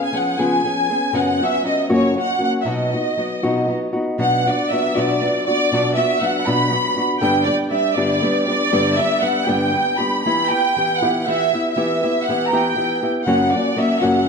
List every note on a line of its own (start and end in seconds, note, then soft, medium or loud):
0.00 0.12 B3 soft
0.00 0.13 C#4 soft
0.00 0.13 G#4 soft
0.00 0.14 G#5 medium
0.13 0.38 F3 medium
0.13 0.38 B3 medium
0.13 0.38 C#4 medium
0.13 0.38 G#4 medium
0.13 0.39 F#5 medium
0.39 0.65 C#3 medium
0.39 0.62 F3 medium
0.39 0.63 B3 medium
0.39 0.64 C#4 medium
0.39 0.64 G#4 medium
0.39 1.14 G#5 medium
0.64 0.89 F3 medium
0.64 0.89 B3 medium
0.64 0.89 C#4 medium
0.64 0.89 G#4 medium
0.90 1.12 B3 soft
0.90 1.13 C#4 soft
0.90 1.14 G#4 medium
1.13 1.39 F#2 medium
1.13 1.40 C#3 medium
1.13 1.40 F#3 medium
1.13 1.40 B3 medium
1.13 1.40 C#4 medium
1.13 1.40 F#4 medium
1.13 1.41 F#5 medium
1.41 1.62 F#3 soft
1.41 1.64 B3 soft
1.41 1.64 C#4 soft
1.41 1.64 F#4 soft
1.41 1.66 E5 medium
1.64 1.89 F#3 medium
1.64 1.89 B3 medium
1.64 1.89 C#4 medium
1.64 1.89 F#4 medium
1.64 1.88 D#5 medium
1.89 2.16 F#2 medium
1.89 2.16 C#3 medium
1.89 2.14 F#3 medium
1.89 2.15 A#3 medium
1.89 2.16 C#4 medium
1.89 2.16 F#4 medium
1.89 2.15 C#5 medium
2.15 2.41 F#3 soft
2.15 2.39 A#3 medium
2.15 2.39 C#4 soft
2.15 2.37 F#4 medium
2.15 2.43 F#5 medium
2.39 2.64 F#3 soft
2.39 2.65 A#3 soft
2.39 2.65 C#4 soft
2.39 2.65 F#4 soft
2.44 2.52 F#5 medium
2.61 2.92 B2 medium
2.61 2.92 F#3 medium
2.61 2.67 E5 soft
2.66 2.92 B3 medium
2.66 2.92 D#4 medium
2.66 2.92 F#4 medium
2.70 3.71 D#5 medium
2.93 3.16 B3 soft
2.93 3.17 D#4 soft
2.93 3.18 F#4 soft
3.17 3.42 F#3 soft
3.17 3.43 B3 medium
3.17 3.43 D#4 soft
3.17 3.42 F#4 medium
3.43 3.70 B2 medium
3.43 3.67 F#3 medium
3.43 3.67 B3 medium
3.43 3.68 D#4 medium
3.43 3.69 F#4 medium
3.68 3.94 F#3 soft
3.68 3.94 B3 soft
3.68 3.92 D#4 soft
3.68 3.92 F#4 soft
3.93 4.18 B3 soft
3.93 4.19 D#4 medium
3.93 4.18 F#4 medium
4.18 4.46 B2 medium
4.18 4.46 F#3 medium
4.18 4.46 B3 medium
4.18 4.46 D4 medium
4.18 4.46 F#4 medium
4.18 4.45 F#5 medium
4.47 4.72 B3 soft
4.47 4.72 D4 soft
4.47 4.72 F#4 soft
4.47 4.72 D5 medium
4.71 4.96 F#3 medium
4.71 4.95 B3 medium
4.71 4.95 D4 medium
4.71 4.94 F#4 medium
4.71 4.96 E5 medium
4.95 5.23 B2 medium
4.95 5.22 F#3 medium
4.95 5.22 B3 medium
4.95 5.22 D4 medium
4.95 5.22 F#4 medium
4.95 5.44 D5 medium
5.23 5.48 F#3 soft
5.23 5.48 B3 soft
5.23 5.48 D4 medium
5.23 5.46 F#4 medium
5.45 5.72 D4 soft
5.45 5.72 F#4 soft
5.45 5.93 D5 loud
5.50 5.72 B3 soft
5.72 5.98 B2 medium
5.72 5.98 F#3 medium
5.72 5.97 B3 medium
5.72 5.96 D4 medium
5.72 5.96 F#4 loud
5.95 6.20 B3 soft
5.95 6.21 D4 soft
5.95 6.21 F#4 medium
5.95 6.20 E5 medium
6.20 6.46 F#3 medium
6.20 6.46 B3 medium
6.20 6.46 D4 medium
6.20 6.46 F#4 medium
6.20 6.46 F#5 medium
6.47 6.73 B2 medium
6.47 6.69 F#3 medium
6.47 6.70 B3 medium
6.47 6.70 D4 medium
6.47 6.72 F#4 medium
6.47 7.04 B5 loud
6.71 6.97 F#3 medium
6.71 6.96 B3 medium
6.71 6.96 D4 soft
6.71 6.95 F#4 medium
6.96 7.21 B3 soft
6.96 7.21 D4 soft
6.96 7.22 F#4 medium
7.20 7.48 G2 medium
7.20 7.47 D3 medium
7.20 7.47 G3 medium
7.20 7.46 B3 medium
7.20 7.45 D4 medium
7.20 7.45 G4 medium
7.20 7.45 G5 medium
7.43 7.71 D4 soft
7.43 7.71 G4 soft
7.43 7.55 D5 medium
7.47 7.70 G3 soft
7.47 7.71 B3 soft
7.70 7.96 G3 medium
7.70 7.96 B3 medium
7.70 7.96 D4 medium
7.70 7.96 G4 medium
7.70 7.94 E5 medium
7.96 8.24 G2 medium
7.96 8.23 D3 medium
7.96 8.21 G3 medium
7.96 8.21 B3 medium
7.96 8.22 D4 medium
7.96 8.23 G4 medium
7.96 8.44 D5 medium
8.22 8.48 G3 medium
8.22 8.48 B3 medium
8.22 8.47 D4 medium
8.22 8.47 G4 medium
8.45 8.71 D4 medium
8.45 8.72 G4 medium
8.45 8.94 D5 loud
8.49 8.71 G3 soft
8.49 8.72 B3 medium
8.72 8.98 G2 medium
8.72 8.99 D3 medium
8.72 8.99 G3 medium
8.72 8.97 B3 medium
8.72 8.97 D4 medium
8.72 8.97 G4 medium
8.96 9.20 G3 soft
8.96 9.21 B3 soft
8.96 9.22 D4 soft
8.96 9.22 G4 soft
8.96 9.22 E5 loud
9.20 9.47 G3 medium
9.20 9.47 B3 medium
9.20 9.46 D4 medium
9.20 9.46 G4 medium
9.20 9.47 F#5 medium
9.47 9.75 G2 medium
9.47 9.75 D3 medium
9.47 9.73 G3 medium
9.47 9.72 B3 medium
9.47 9.74 D4 medium
9.47 9.74 G4 medium
9.47 9.99 G5 medium
9.74 9.99 G3 medium
9.74 9.99 B3 soft
9.74 9.98 D4 medium
9.74 9.97 G4 medium
9.98 10.25 G3 soft
9.98 10.26 B3 soft
9.98 10.25 D4 soft
9.98 10.25 G4 soft
9.98 10.21 B5 medium
10.22 10.52 E3 medium
10.22 10.48 B5 medium
10.26 10.50 B3 medium
10.26 10.50 E4 medium
10.26 10.48 G4 medium
10.48 10.76 B3 soft
10.48 10.77 E4 soft
10.48 10.76 G4 soft
10.48 11.00 G5 loud
10.76 11.02 E3 medium
10.76 11.02 B3 medium
10.76 11.01 E4 medium
10.76 11.01 G4 medium
10.97 11.18 F#5 medium
11.02 11.27 E3 medium
11.02 11.26 B3 medium
11.02 11.27 E4 medium
11.02 11.28 G4 medium
11.22 11.70 E5 medium
11.22 11.29 F#5 medium
11.27 11.53 E3 medium
11.27 11.53 B3 medium
11.27 11.53 E4 medium
11.27 11.52 G4 medium
11.53 11.76 B3 soft
11.53 11.76 E4 medium
11.53 11.77 G4 soft
11.72 12.21 E5 medium
11.76 12.03 E3 medium
11.76 12.03 B3 medium
11.76 12.03 E4 medium
11.76 12.02 G4 medium
12.03 12.29 B3 soft
12.03 12.28 E4 soft
12.03 12.28 G4 soft
12.23 12.43 F#5 medium
12.29 12.52 E3 medium
12.29 12.52 B3 medium
12.29 12.52 E4 medium
12.29 12.52 G4 medium
12.47 13.07 G5 medium
12.47 12.53 A#5 medium
12.53 12.75 E3 medium
12.53 12.76 B3 medium
12.53 12.76 E4 medium
12.53 12.76 G4 medium
12.76 13.02 E3 medium
12.76 13.02 B3 medium
12.76 13.02 E4 soft
12.76 13.01 G4 medium
13.03 13.27 B3 soft
13.03 13.27 E4 soft
13.03 13.27 G4 medium
13.23 13.52 C#3 medium
13.23 13.53 A#3 medium
13.23 13.49 F#5 medium
13.27 13.53 F#2 medium
13.27 13.53 F#3 medium
13.27 13.53 C#4 medium
13.27 13.52 F#4 loud
13.51 13.75 A#3 soft
13.51 13.76 C#4 medium
13.51 13.77 F#4 soft
13.51 13.76 D5 medium
13.55 13.75 F#3 soft
13.76 14.01 F#3 medium
13.76 14.01 A#3 medium
13.76 14.01 C#4 medium
13.76 14.00 F#4 medium
13.76 14.03 E5 medium
14.01 14.28 F#2 medium
14.01 14.28 C#3 medium
14.01 14.26 F#3 medium
14.01 14.26 A#3 medium
14.01 14.27 C#4 medium
14.01 14.27 F#4 medium
14.01 14.29 F#5 medium